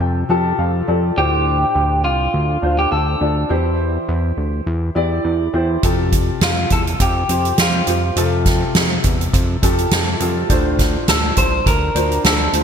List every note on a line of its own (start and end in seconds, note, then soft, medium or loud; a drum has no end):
0.00 0.24 F2 medium
0.00 1.18 C3 medium
0.00 0.29 F4 medium
0.00 0.30 G4 medium
0.00 0.30 A4 medium
0.00 1.18 C5 medium
0.00 0.27 G5 medium
0.00 0.29 A5 medium
0.29 0.53 F2 medium
0.29 0.75 F4 medium
0.29 0.75 G4 medium
0.29 0.75 A4 medium
0.29 0.57 A5 medium
0.59 0.83 F2 medium
0.59 0.86 F5 medium
0.87 1.12 F2 medium
0.87 1.10 F4 medium
0.87 1.11 G4 medium
0.87 1.11 A4 medium
0.87 1.15 D5 medium
1.16 1.65 D2 medium
1.16 2.00 A2 medium
1.16 2.05 D4 medium
1.16 2.05 F4 medium
1.16 2.04 G4 medium
1.16 2.05 C5 medium
1.75 2.06 D2 loud
2.04 2.29 C2 medium
2.04 2.78 F4 medium
2.34 2.58 D2 medium
2.62 2.87 D2 medium
2.62 3.08 D4 medium
2.62 3.08 F4 medium
2.62 3.09 C5 medium
2.79 2.91 G4 medium
2.92 3.16 D2 medium
2.92 3.34 A4 medium
3.20 3.45 D2 medium
3.20 3.43 D4 medium
3.20 3.44 F4 medium
3.20 3.44 D5 medium
3.49 3.98 E2 medium
3.49 4.33 E3 medium
3.49 4.38 E4 medium
3.49 4.38 G4 medium
3.49 4.38 C5 medium
4.09 4.32 E2 loud
4.37 4.61 D2 medium
4.67 4.91 E2 loud
4.95 5.20 E2 medium
4.95 5.41 E4 medium
4.95 5.41 G4 medium
4.95 5.42 D5 medium
5.25 5.49 E2 medium
5.53 5.78 E2 medium
5.53 5.77 E4 medium
5.53 5.77 G4 medium
5.53 5.77 C5 medium
5.83 6.31 F2 medium
5.83 6.67 C3 medium
5.83 6.71 F4 medium
5.83 6.71 G4 medium
5.83 6.72 A4 medium
5.83 kick medium
5.83 closed hi-hat medium
6.12 kick medium
6.12 closed hi-hat medium
6.41 6.65 F2 medium
6.41 6.72 F4 medium
6.41 snare medium
6.41 closed hi-hat medium
6.70 6.95 E2 medium
6.70 6.80 A4 medium
6.70 kick medium
6.70 closed hi-hat medium
6.87 closed hi-hat soft
7.00 7.24 F2 loud
7.00 7.60 G4 medium
7.00 kick medium
7.00 closed hi-hat medium
7.29 7.53 F2 medium
7.29 7.75 F4 medium
7.29 7.75 G4 medium
7.29 7.75 C5 medium
7.29 closed hi-hat medium
7.45 closed hi-hat soft
7.58 7.82 F2 medium
7.58 8.02 F4 medium
7.58 snare medium
7.58 closed hi-hat medium
7.87 8.11 F2 medium
7.87 8.10 F4 medium
7.87 8.10 G4 medium
7.87 8.11 C5 medium
7.87 closed hi-hat medium
8.16 8.64 F2 loud
8.16 9.00 C3 medium
8.16 9.04 F4 medium
8.16 9.05 G4 medium
8.16 9.05 A4 medium
8.16 closed hi-hat medium
8.46 kick medium
8.46 snare soft
8.46 closed hi-hat medium
8.75 8.99 F2 medium
8.75 snare medium
8.75 closed hi-hat medium
9.04 9.28 E2 medium
9.04 kick medium
9.04 closed hi-hat medium
9.21 closed hi-hat soft
9.33 9.57 F2 loud
9.33 kick medium
9.33 closed hi-hat medium
9.62 9.86 F2 medium
9.62 10.08 F4 medium
9.62 10.08 G4 medium
9.62 10.09 A4 medium
9.62 kick medium
9.62 closed hi-hat medium
9.78 closed hi-hat soft
9.91 10.15 F2 medium
9.91 snare loud
9.91 closed hi-hat medium
10.20 10.44 F2 medium
10.20 10.43 F4 medium
10.20 10.44 G4 medium
10.20 10.44 A4 medium
10.20 closed hi-hat medium
10.49 10.98 D2 loud
10.49 11.33 A2 medium
10.49 11.37 D4 medium
10.49 11.38 F4 medium
10.49 11.38 C5 medium
10.49 kick medium
10.49 closed hi-hat medium
10.79 kick medium
10.79 snare soft
10.79 closed hi-hat medium
11.08 11.32 D2 loud
11.08 11.38 A4 medium
11.08 snare medium
11.08 closed hi-hat medium
11.37 11.61 C2 medium
11.37 11.67 C5 medium
11.37 kick medium
11.37 closed hi-hat medium
11.66 11.90 D2 medium
11.66 12.25 A#4 medium
11.66 kick medium
11.66 closed hi-hat medium
11.95 12.19 D2 medium
11.95 12.41 D4 medium
11.95 12.41 F4 medium
11.95 12.41 C5 medium
11.95 closed hi-hat medium
12.12 closed hi-hat soft
12.24 12.48 D2 medium
12.24 12.63 A4 medium
12.24 snare medium
12.24 closed hi-hat medium
12.53 12.63 D2 medium
12.53 12.63 D4 medium
12.53 12.63 F4 soft
12.53 12.63 C5 medium
12.53 closed hi-hat medium